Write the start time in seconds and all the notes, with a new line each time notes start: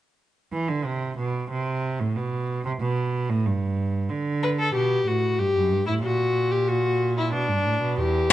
0.52 E3
0.69 D3
0.85 C3
1.18 B2
1.50 C3
2.00 A2
2.16 B2
2.65 C3
2.81 B2
3.29 A2
3.46 G2
4.10 D3
4.43 B4
4.59 A4
4.74 B2 G4
5.07 A2 F#4
5.39 G2 G4
5.55 F#2
5.72 G2
5.87 A2 E4
6.03 A#2 F#4
6.51 G4
6.68 F#4
7.18 E4
7.33 B2 D4
7.49 G2
7.65 A2
7.81 B2
7.98 E2 G4